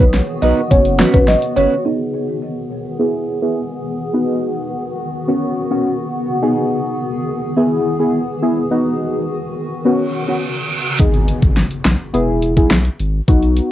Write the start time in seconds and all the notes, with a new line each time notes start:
Already playing: B3 F#4
0.00 B1 B4, kick
0.14 snare, closed hi-hat
0.42 B1 B3 D#4 F#4 B4 D#5, closed hi-hat
0.70 F#1 B3 C#4 F#4 C#5, kick, closed hi-hat
0.85 closed hi-hat
0.99 B3 C#4 F#4 B4, snare, clap, closed hi-hat
1.13 G#1 B3 C#4 F#4 B4, kick
1.28 D#5, snare, closed hi-hat
1.42 closed hi-hat
1.56 F#1 B3 C#4 F#4 B4 C#5, closed hi-hat
1.85 B3 D#4 G#4
2.99 B3 E4 G#4
3.42 B3 E4 G#4
4.13 B3 D#4 F#4
5.28 B3 C#4 F#4
5.71 B3 C#4 F#4
6.42 B3 D#4 G#4
7.56 B3 E4 G#4
7.99 B3 E4 G#4
8.42 B3 E4 G#4
8.71 B3 D#4 F#4
9.85 B3 C#4 F#4, reverse cymbal
10.28 B3 C#4 F#4
10.99 G#1 B3 D#4 G#4, kick, closed hi-hat, impact
11.14 closed hi-hat
11.28 closed hi-hat
11.42 G#1, kick
11.57 snare, closed hi-hat
11.71 closed hi-hat
11.85 B1, snare, clap, closed hi-hat
12.13 E1 B3 E4 G#4, closed hi-hat
12.42 closed hi-hat
12.56 B1 B3 E4 G#4, kick
12.71 snare, clap, closed hi-hat
12.85 closed hi-hat
12.99 G#1, closed hi-hat
13.28 B1 B3 D#4 F#4, kick, closed hi-hat
13.42 closed hi-hat
13.57 closed hi-hat